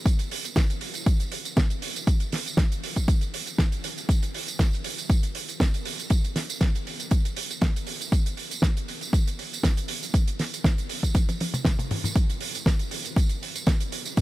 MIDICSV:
0, 0, Header, 1, 2, 480
1, 0, Start_track
1, 0, Tempo, 504202
1, 54, Time_signature, 4, 2, 24, 8
1, 13531, End_track
2, 0, Start_track
2, 0, Title_t, "Drums"
2, 53, Note_on_c, 9, 36, 124
2, 54, Note_on_c, 9, 42, 73
2, 65, Note_on_c, 9, 54, 50
2, 148, Note_off_c, 9, 36, 0
2, 150, Note_off_c, 9, 42, 0
2, 160, Note_off_c, 9, 54, 0
2, 181, Note_on_c, 9, 42, 59
2, 184, Note_on_c, 9, 54, 30
2, 276, Note_off_c, 9, 42, 0
2, 280, Note_off_c, 9, 54, 0
2, 299, Note_on_c, 9, 46, 110
2, 394, Note_off_c, 9, 46, 0
2, 425, Note_on_c, 9, 42, 60
2, 429, Note_on_c, 9, 54, 64
2, 520, Note_off_c, 9, 42, 0
2, 524, Note_off_c, 9, 54, 0
2, 533, Note_on_c, 9, 36, 127
2, 536, Note_on_c, 9, 38, 125
2, 536, Note_on_c, 9, 42, 71
2, 536, Note_on_c, 9, 54, 50
2, 628, Note_off_c, 9, 36, 0
2, 631, Note_off_c, 9, 42, 0
2, 632, Note_off_c, 9, 38, 0
2, 632, Note_off_c, 9, 54, 0
2, 666, Note_on_c, 9, 42, 55
2, 673, Note_on_c, 9, 54, 34
2, 762, Note_off_c, 9, 42, 0
2, 768, Note_off_c, 9, 54, 0
2, 771, Note_on_c, 9, 46, 100
2, 866, Note_off_c, 9, 46, 0
2, 893, Note_on_c, 9, 42, 57
2, 906, Note_on_c, 9, 54, 58
2, 988, Note_off_c, 9, 42, 0
2, 1001, Note_off_c, 9, 54, 0
2, 1013, Note_on_c, 9, 36, 127
2, 1013, Note_on_c, 9, 42, 79
2, 1025, Note_on_c, 9, 54, 54
2, 1108, Note_off_c, 9, 36, 0
2, 1108, Note_off_c, 9, 42, 0
2, 1120, Note_off_c, 9, 54, 0
2, 1142, Note_on_c, 9, 42, 58
2, 1146, Note_on_c, 9, 54, 32
2, 1237, Note_off_c, 9, 42, 0
2, 1242, Note_off_c, 9, 54, 0
2, 1253, Note_on_c, 9, 46, 113
2, 1348, Note_off_c, 9, 46, 0
2, 1382, Note_on_c, 9, 42, 53
2, 1384, Note_on_c, 9, 54, 68
2, 1477, Note_off_c, 9, 42, 0
2, 1480, Note_off_c, 9, 54, 0
2, 1493, Note_on_c, 9, 36, 127
2, 1493, Note_on_c, 9, 42, 72
2, 1495, Note_on_c, 9, 54, 50
2, 1501, Note_on_c, 9, 38, 123
2, 1588, Note_off_c, 9, 36, 0
2, 1589, Note_off_c, 9, 42, 0
2, 1591, Note_off_c, 9, 54, 0
2, 1597, Note_off_c, 9, 38, 0
2, 1621, Note_on_c, 9, 42, 57
2, 1630, Note_on_c, 9, 54, 33
2, 1716, Note_off_c, 9, 42, 0
2, 1726, Note_off_c, 9, 54, 0
2, 1733, Note_on_c, 9, 46, 105
2, 1829, Note_off_c, 9, 46, 0
2, 1866, Note_on_c, 9, 54, 59
2, 1870, Note_on_c, 9, 42, 54
2, 1961, Note_off_c, 9, 54, 0
2, 1965, Note_off_c, 9, 42, 0
2, 1973, Note_on_c, 9, 36, 120
2, 1973, Note_on_c, 9, 42, 76
2, 1982, Note_on_c, 9, 54, 54
2, 2068, Note_off_c, 9, 36, 0
2, 2069, Note_off_c, 9, 42, 0
2, 2077, Note_off_c, 9, 54, 0
2, 2095, Note_on_c, 9, 42, 49
2, 2116, Note_on_c, 9, 54, 32
2, 2190, Note_off_c, 9, 42, 0
2, 2211, Note_off_c, 9, 54, 0
2, 2212, Note_on_c, 9, 46, 122
2, 2217, Note_on_c, 9, 38, 63
2, 2307, Note_off_c, 9, 46, 0
2, 2313, Note_off_c, 9, 38, 0
2, 2343, Note_on_c, 9, 42, 54
2, 2352, Note_on_c, 9, 54, 63
2, 2438, Note_off_c, 9, 42, 0
2, 2447, Note_off_c, 9, 54, 0
2, 2448, Note_on_c, 9, 38, 111
2, 2453, Note_on_c, 9, 36, 126
2, 2454, Note_on_c, 9, 42, 75
2, 2457, Note_on_c, 9, 54, 55
2, 2543, Note_off_c, 9, 38, 0
2, 2548, Note_off_c, 9, 36, 0
2, 2550, Note_off_c, 9, 42, 0
2, 2552, Note_off_c, 9, 54, 0
2, 2588, Note_on_c, 9, 42, 52
2, 2590, Note_on_c, 9, 54, 34
2, 2683, Note_off_c, 9, 42, 0
2, 2685, Note_off_c, 9, 54, 0
2, 2699, Note_on_c, 9, 46, 106
2, 2794, Note_off_c, 9, 46, 0
2, 2818, Note_on_c, 9, 42, 54
2, 2822, Note_on_c, 9, 36, 65
2, 2829, Note_on_c, 9, 54, 57
2, 2913, Note_off_c, 9, 42, 0
2, 2917, Note_off_c, 9, 36, 0
2, 2924, Note_off_c, 9, 54, 0
2, 2933, Note_on_c, 9, 36, 121
2, 2936, Note_on_c, 9, 42, 81
2, 2945, Note_on_c, 9, 54, 53
2, 3028, Note_off_c, 9, 36, 0
2, 3031, Note_off_c, 9, 42, 0
2, 3040, Note_off_c, 9, 54, 0
2, 3057, Note_on_c, 9, 42, 52
2, 3072, Note_on_c, 9, 54, 34
2, 3152, Note_off_c, 9, 42, 0
2, 3167, Note_off_c, 9, 54, 0
2, 3177, Note_on_c, 9, 46, 120
2, 3272, Note_off_c, 9, 46, 0
2, 3298, Note_on_c, 9, 42, 54
2, 3306, Note_on_c, 9, 54, 61
2, 3393, Note_off_c, 9, 42, 0
2, 3401, Note_off_c, 9, 54, 0
2, 3413, Note_on_c, 9, 36, 122
2, 3413, Note_on_c, 9, 38, 119
2, 3414, Note_on_c, 9, 42, 78
2, 3423, Note_on_c, 9, 54, 59
2, 3508, Note_off_c, 9, 36, 0
2, 3508, Note_off_c, 9, 38, 0
2, 3509, Note_off_c, 9, 42, 0
2, 3518, Note_off_c, 9, 54, 0
2, 3542, Note_on_c, 9, 42, 55
2, 3545, Note_on_c, 9, 54, 33
2, 3638, Note_off_c, 9, 42, 0
2, 3640, Note_off_c, 9, 54, 0
2, 3654, Note_on_c, 9, 46, 105
2, 3750, Note_off_c, 9, 46, 0
2, 3784, Note_on_c, 9, 42, 51
2, 3787, Note_on_c, 9, 54, 55
2, 3880, Note_off_c, 9, 42, 0
2, 3882, Note_off_c, 9, 54, 0
2, 3892, Note_on_c, 9, 36, 117
2, 3897, Note_on_c, 9, 42, 78
2, 3906, Note_on_c, 9, 54, 59
2, 3988, Note_off_c, 9, 36, 0
2, 3992, Note_off_c, 9, 42, 0
2, 4001, Note_off_c, 9, 54, 0
2, 4023, Note_on_c, 9, 42, 57
2, 4024, Note_on_c, 9, 54, 36
2, 4118, Note_off_c, 9, 42, 0
2, 4119, Note_off_c, 9, 54, 0
2, 4136, Note_on_c, 9, 46, 103
2, 4231, Note_off_c, 9, 46, 0
2, 4264, Note_on_c, 9, 42, 55
2, 4265, Note_on_c, 9, 54, 71
2, 4359, Note_off_c, 9, 42, 0
2, 4360, Note_off_c, 9, 54, 0
2, 4371, Note_on_c, 9, 38, 115
2, 4372, Note_on_c, 9, 36, 125
2, 4375, Note_on_c, 9, 42, 71
2, 4379, Note_on_c, 9, 54, 54
2, 4466, Note_off_c, 9, 38, 0
2, 4467, Note_off_c, 9, 36, 0
2, 4470, Note_off_c, 9, 42, 0
2, 4475, Note_off_c, 9, 54, 0
2, 4504, Note_on_c, 9, 54, 32
2, 4516, Note_on_c, 9, 42, 50
2, 4600, Note_off_c, 9, 54, 0
2, 4611, Note_off_c, 9, 42, 0
2, 4611, Note_on_c, 9, 46, 109
2, 4706, Note_off_c, 9, 46, 0
2, 4742, Note_on_c, 9, 42, 53
2, 4746, Note_on_c, 9, 54, 65
2, 4837, Note_off_c, 9, 42, 0
2, 4841, Note_off_c, 9, 54, 0
2, 4852, Note_on_c, 9, 36, 120
2, 4853, Note_on_c, 9, 42, 71
2, 4863, Note_on_c, 9, 54, 56
2, 4947, Note_off_c, 9, 36, 0
2, 4948, Note_off_c, 9, 42, 0
2, 4958, Note_off_c, 9, 54, 0
2, 4979, Note_on_c, 9, 42, 56
2, 4986, Note_on_c, 9, 54, 34
2, 5075, Note_off_c, 9, 42, 0
2, 5081, Note_off_c, 9, 54, 0
2, 5091, Note_on_c, 9, 46, 107
2, 5186, Note_off_c, 9, 46, 0
2, 5223, Note_on_c, 9, 42, 55
2, 5227, Note_on_c, 9, 54, 58
2, 5318, Note_off_c, 9, 42, 0
2, 5322, Note_off_c, 9, 54, 0
2, 5332, Note_on_c, 9, 36, 117
2, 5336, Note_on_c, 9, 38, 124
2, 5338, Note_on_c, 9, 54, 54
2, 5341, Note_on_c, 9, 42, 73
2, 5427, Note_off_c, 9, 36, 0
2, 5431, Note_off_c, 9, 38, 0
2, 5434, Note_off_c, 9, 54, 0
2, 5436, Note_off_c, 9, 42, 0
2, 5463, Note_on_c, 9, 54, 35
2, 5468, Note_on_c, 9, 42, 57
2, 5558, Note_off_c, 9, 54, 0
2, 5563, Note_off_c, 9, 42, 0
2, 5573, Note_on_c, 9, 46, 109
2, 5668, Note_off_c, 9, 46, 0
2, 5705, Note_on_c, 9, 42, 53
2, 5708, Note_on_c, 9, 54, 64
2, 5800, Note_off_c, 9, 42, 0
2, 5803, Note_off_c, 9, 54, 0
2, 5806, Note_on_c, 9, 42, 82
2, 5812, Note_on_c, 9, 36, 114
2, 5818, Note_on_c, 9, 54, 62
2, 5901, Note_off_c, 9, 42, 0
2, 5907, Note_off_c, 9, 36, 0
2, 5913, Note_off_c, 9, 54, 0
2, 5944, Note_on_c, 9, 42, 50
2, 5948, Note_on_c, 9, 54, 37
2, 6039, Note_off_c, 9, 42, 0
2, 6043, Note_off_c, 9, 54, 0
2, 6052, Note_on_c, 9, 38, 64
2, 6052, Note_on_c, 9, 46, 116
2, 6147, Note_off_c, 9, 38, 0
2, 6147, Note_off_c, 9, 46, 0
2, 6184, Note_on_c, 9, 42, 52
2, 6186, Note_on_c, 9, 54, 76
2, 6279, Note_off_c, 9, 42, 0
2, 6281, Note_off_c, 9, 54, 0
2, 6291, Note_on_c, 9, 36, 122
2, 6291, Note_on_c, 9, 38, 109
2, 6291, Note_on_c, 9, 42, 83
2, 6386, Note_off_c, 9, 38, 0
2, 6387, Note_off_c, 9, 36, 0
2, 6387, Note_off_c, 9, 42, 0
2, 6425, Note_on_c, 9, 54, 36
2, 6431, Note_on_c, 9, 42, 57
2, 6520, Note_off_c, 9, 54, 0
2, 6526, Note_off_c, 9, 42, 0
2, 6539, Note_on_c, 9, 46, 92
2, 6634, Note_off_c, 9, 46, 0
2, 6661, Note_on_c, 9, 42, 55
2, 6663, Note_on_c, 9, 54, 72
2, 6756, Note_off_c, 9, 42, 0
2, 6758, Note_off_c, 9, 54, 0
2, 6767, Note_on_c, 9, 42, 79
2, 6772, Note_on_c, 9, 36, 114
2, 6772, Note_on_c, 9, 54, 59
2, 6862, Note_off_c, 9, 42, 0
2, 6867, Note_off_c, 9, 36, 0
2, 6868, Note_off_c, 9, 54, 0
2, 6902, Note_on_c, 9, 54, 36
2, 6904, Note_on_c, 9, 42, 58
2, 6998, Note_off_c, 9, 54, 0
2, 6999, Note_off_c, 9, 42, 0
2, 7011, Note_on_c, 9, 46, 118
2, 7106, Note_off_c, 9, 46, 0
2, 7143, Note_on_c, 9, 42, 54
2, 7146, Note_on_c, 9, 54, 73
2, 7238, Note_off_c, 9, 42, 0
2, 7241, Note_off_c, 9, 54, 0
2, 7249, Note_on_c, 9, 42, 79
2, 7252, Note_on_c, 9, 36, 111
2, 7258, Note_on_c, 9, 38, 115
2, 7344, Note_off_c, 9, 42, 0
2, 7347, Note_off_c, 9, 36, 0
2, 7353, Note_off_c, 9, 38, 0
2, 7390, Note_on_c, 9, 54, 34
2, 7391, Note_on_c, 9, 42, 60
2, 7485, Note_off_c, 9, 54, 0
2, 7486, Note_off_c, 9, 42, 0
2, 7488, Note_on_c, 9, 46, 103
2, 7584, Note_off_c, 9, 46, 0
2, 7622, Note_on_c, 9, 42, 53
2, 7632, Note_on_c, 9, 54, 76
2, 7717, Note_off_c, 9, 42, 0
2, 7727, Note_off_c, 9, 54, 0
2, 7732, Note_on_c, 9, 36, 115
2, 7732, Note_on_c, 9, 42, 75
2, 7740, Note_on_c, 9, 54, 60
2, 7827, Note_off_c, 9, 36, 0
2, 7827, Note_off_c, 9, 42, 0
2, 7835, Note_off_c, 9, 54, 0
2, 7864, Note_on_c, 9, 42, 59
2, 7872, Note_on_c, 9, 54, 33
2, 7959, Note_off_c, 9, 42, 0
2, 7967, Note_off_c, 9, 54, 0
2, 7970, Note_on_c, 9, 46, 100
2, 8065, Note_off_c, 9, 46, 0
2, 8103, Note_on_c, 9, 42, 58
2, 8104, Note_on_c, 9, 54, 73
2, 8198, Note_off_c, 9, 42, 0
2, 8199, Note_off_c, 9, 54, 0
2, 8207, Note_on_c, 9, 38, 110
2, 8212, Note_on_c, 9, 36, 121
2, 8219, Note_on_c, 9, 54, 62
2, 8220, Note_on_c, 9, 42, 80
2, 8302, Note_off_c, 9, 38, 0
2, 8307, Note_off_c, 9, 36, 0
2, 8315, Note_off_c, 9, 42, 0
2, 8315, Note_off_c, 9, 54, 0
2, 8348, Note_on_c, 9, 42, 53
2, 8349, Note_on_c, 9, 54, 33
2, 8443, Note_off_c, 9, 42, 0
2, 8444, Note_off_c, 9, 54, 0
2, 8457, Note_on_c, 9, 46, 92
2, 8552, Note_off_c, 9, 46, 0
2, 8578, Note_on_c, 9, 42, 55
2, 8593, Note_on_c, 9, 54, 68
2, 8673, Note_off_c, 9, 42, 0
2, 8688, Note_off_c, 9, 54, 0
2, 8692, Note_on_c, 9, 36, 116
2, 8699, Note_on_c, 9, 42, 79
2, 8699, Note_on_c, 9, 54, 61
2, 8787, Note_off_c, 9, 36, 0
2, 8794, Note_off_c, 9, 42, 0
2, 8794, Note_off_c, 9, 54, 0
2, 8829, Note_on_c, 9, 42, 61
2, 8830, Note_on_c, 9, 54, 35
2, 8924, Note_off_c, 9, 42, 0
2, 8926, Note_off_c, 9, 54, 0
2, 8939, Note_on_c, 9, 46, 99
2, 9034, Note_off_c, 9, 46, 0
2, 9073, Note_on_c, 9, 42, 50
2, 9078, Note_on_c, 9, 54, 71
2, 9168, Note_off_c, 9, 42, 0
2, 9172, Note_on_c, 9, 36, 115
2, 9173, Note_off_c, 9, 54, 0
2, 9176, Note_on_c, 9, 38, 119
2, 9176, Note_on_c, 9, 42, 84
2, 9179, Note_on_c, 9, 54, 56
2, 9268, Note_off_c, 9, 36, 0
2, 9272, Note_off_c, 9, 38, 0
2, 9272, Note_off_c, 9, 42, 0
2, 9274, Note_off_c, 9, 54, 0
2, 9304, Note_on_c, 9, 42, 62
2, 9307, Note_on_c, 9, 54, 36
2, 9399, Note_off_c, 9, 42, 0
2, 9402, Note_off_c, 9, 54, 0
2, 9408, Note_on_c, 9, 46, 103
2, 9503, Note_off_c, 9, 46, 0
2, 9547, Note_on_c, 9, 54, 65
2, 9552, Note_on_c, 9, 42, 53
2, 9642, Note_off_c, 9, 54, 0
2, 9647, Note_off_c, 9, 42, 0
2, 9653, Note_on_c, 9, 36, 116
2, 9655, Note_on_c, 9, 42, 84
2, 9660, Note_on_c, 9, 54, 61
2, 9748, Note_off_c, 9, 36, 0
2, 9750, Note_off_c, 9, 42, 0
2, 9755, Note_off_c, 9, 54, 0
2, 9782, Note_on_c, 9, 42, 59
2, 9786, Note_on_c, 9, 54, 35
2, 9877, Note_off_c, 9, 42, 0
2, 9881, Note_off_c, 9, 54, 0
2, 9895, Note_on_c, 9, 46, 101
2, 9898, Note_on_c, 9, 38, 66
2, 9990, Note_off_c, 9, 46, 0
2, 9993, Note_off_c, 9, 38, 0
2, 10030, Note_on_c, 9, 42, 57
2, 10032, Note_on_c, 9, 54, 63
2, 10125, Note_off_c, 9, 42, 0
2, 10127, Note_off_c, 9, 54, 0
2, 10133, Note_on_c, 9, 36, 124
2, 10135, Note_on_c, 9, 38, 115
2, 10139, Note_on_c, 9, 54, 59
2, 10141, Note_on_c, 9, 42, 81
2, 10228, Note_off_c, 9, 36, 0
2, 10230, Note_off_c, 9, 38, 0
2, 10234, Note_off_c, 9, 54, 0
2, 10236, Note_off_c, 9, 42, 0
2, 10264, Note_on_c, 9, 42, 56
2, 10274, Note_on_c, 9, 54, 37
2, 10359, Note_off_c, 9, 42, 0
2, 10369, Note_off_c, 9, 54, 0
2, 10372, Note_on_c, 9, 46, 102
2, 10467, Note_off_c, 9, 46, 0
2, 10502, Note_on_c, 9, 36, 60
2, 10503, Note_on_c, 9, 42, 56
2, 10509, Note_on_c, 9, 54, 65
2, 10597, Note_off_c, 9, 36, 0
2, 10599, Note_off_c, 9, 42, 0
2, 10604, Note_off_c, 9, 54, 0
2, 10612, Note_on_c, 9, 42, 89
2, 10613, Note_on_c, 9, 36, 116
2, 10615, Note_on_c, 9, 48, 63
2, 10622, Note_on_c, 9, 54, 59
2, 10708, Note_off_c, 9, 36, 0
2, 10708, Note_off_c, 9, 42, 0
2, 10710, Note_off_c, 9, 48, 0
2, 10717, Note_off_c, 9, 54, 0
2, 10744, Note_on_c, 9, 42, 65
2, 10745, Note_on_c, 9, 48, 56
2, 10754, Note_on_c, 9, 54, 36
2, 10839, Note_off_c, 9, 42, 0
2, 10841, Note_off_c, 9, 48, 0
2, 10849, Note_off_c, 9, 54, 0
2, 10857, Note_on_c, 9, 46, 104
2, 10863, Note_on_c, 9, 48, 70
2, 10952, Note_off_c, 9, 46, 0
2, 10958, Note_off_c, 9, 48, 0
2, 10984, Note_on_c, 9, 47, 68
2, 10986, Note_on_c, 9, 42, 60
2, 10987, Note_on_c, 9, 54, 65
2, 11079, Note_off_c, 9, 47, 0
2, 11082, Note_off_c, 9, 42, 0
2, 11082, Note_off_c, 9, 54, 0
2, 11087, Note_on_c, 9, 38, 123
2, 11093, Note_on_c, 9, 36, 114
2, 11096, Note_on_c, 9, 47, 88
2, 11100, Note_on_c, 9, 42, 82
2, 11102, Note_on_c, 9, 54, 56
2, 11182, Note_off_c, 9, 38, 0
2, 11188, Note_off_c, 9, 36, 0
2, 11191, Note_off_c, 9, 47, 0
2, 11195, Note_off_c, 9, 42, 0
2, 11197, Note_off_c, 9, 54, 0
2, 11222, Note_on_c, 9, 47, 73
2, 11226, Note_on_c, 9, 42, 59
2, 11230, Note_on_c, 9, 54, 33
2, 11317, Note_off_c, 9, 47, 0
2, 11321, Note_off_c, 9, 42, 0
2, 11325, Note_off_c, 9, 54, 0
2, 11336, Note_on_c, 9, 46, 102
2, 11339, Note_on_c, 9, 45, 90
2, 11431, Note_off_c, 9, 46, 0
2, 11434, Note_off_c, 9, 45, 0
2, 11463, Note_on_c, 9, 45, 90
2, 11466, Note_on_c, 9, 42, 62
2, 11476, Note_on_c, 9, 54, 75
2, 11558, Note_off_c, 9, 45, 0
2, 11562, Note_off_c, 9, 42, 0
2, 11571, Note_off_c, 9, 54, 0
2, 11572, Note_on_c, 9, 42, 78
2, 11573, Note_on_c, 9, 36, 124
2, 11667, Note_off_c, 9, 42, 0
2, 11668, Note_off_c, 9, 36, 0
2, 11706, Note_on_c, 9, 42, 57
2, 11709, Note_on_c, 9, 54, 36
2, 11801, Note_off_c, 9, 42, 0
2, 11805, Note_off_c, 9, 54, 0
2, 11810, Note_on_c, 9, 46, 112
2, 11905, Note_off_c, 9, 46, 0
2, 11947, Note_on_c, 9, 54, 65
2, 11948, Note_on_c, 9, 42, 65
2, 12042, Note_off_c, 9, 54, 0
2, 12043, Note_off_c, 9, 42, 0
2, 12052, Note_on_c, 9, 36, 125
2, 12055, Note_on_c, 9, 38, 122
2, 12056, Note_on_c, 9, 54, 56
2, 12062, Note_on_c, 9, 42, 72
2, 12148, Note_off_c, 9, 36, 0
2, 12150, Note_off_c, 9, 38, 0
2, 12151, Note_off_c, 9, 54, 0
2, 12157, Note_off_c, 9, 42, 0
2, 12178, Note_on_c, 9, 42, 55
2, 12199, Note_on_c, 9, 54, 32
2, 12273, Note_off_c, 9, 42, 0
2, 12292, Note_on_c, 9, 46, 116
2, 12294, Note_off_c, 9, 54, 0
2, 12387, Note_off_c, 9, 46, 0
2, 12421, Note_on_c, 9, 42, 60
2, 12428, Note_on_c, 9, 54, 63
2, 12516, Note_off_c, 9, 42, 0
2, 12523, Note_off_c, 9, 54, 0
2, 12533, Note_on_c, 9, 36, 120
2, 12538, Note_on_c, 9, 42, 82
2, 12545, Note_on_c, 9, 54, 55
2, 12628, Note_off_c, 9, 36, 0
2, 12634, Note_off_c, 9, 42, 0
2, 12640, Note_off_c, 9, 54, 0
2, 12655, Note_on_c, 9, 42, 57
2, 12667, Note_on_c, 9, 54, 34
2, 12750, Note_off_c, 9, 42, 0
2, 12762, Note_off_c, 9, 54, 0
2, 12782, Note_on_c, 9, 46, 99
2, 12877, Note_off_c, 9, 46, 0
2, 12904, Note_on_c, 9, 42, 53
2, 12905, Note_on_c, 9, 54, 68
2, 12999, Note_off_c, 9, 42, 0
2, 13000, Note_off_c, 9, 54, 0
2, 13010, Note_on_c, 9, 42, 85
2, 13013, Note_on_c, 9, 36, 117
2, 13015, Note_on_c, 9, 38, 127
2, 13017, Note_on_c, 9, 54, 59
2, 13105, Note_off_c, 9, 42, 0
2, 13108, Note_off_c, 9, 36, 0
2, 13110, Note_off_c, 9, 38, 0
2, 13112, Note_off_c, 9, 54, 0
2, 13141, Note_on_c, 9, 42, 64
2, 13147, Note_on_c, 9, 54, 37
2, 13236, Note_off_c, 9, 42, 0
2, 13243, Note_off_c, 9, 54, 0
2, 13254, Note_on_c, 9, 46, 110
2, 13349, Note_off_c, 9, 46, 0
2, 13379, Note_on_c, 9, 54, 65
2, 13386, Note_on_c, 9, 42, 58
2, 13474, Note_off_c, 9, 54, 0
2, 13481, Note_off_c, 9, 42, 0
2, 13491, Note_on_c, 9, 42, 86
2, 13493, Note_on_c, 9, 36, 119
2, 13501, Note_on_c, 9, 54, 54
2, 13531, Note_off_c, 9, 36, 0
2, 13531, Note_off_c, 9, 42, 0
2, 13531, Note_off_c, 9, 54, 0
2, 13531, End_track
0, 0, End_of_file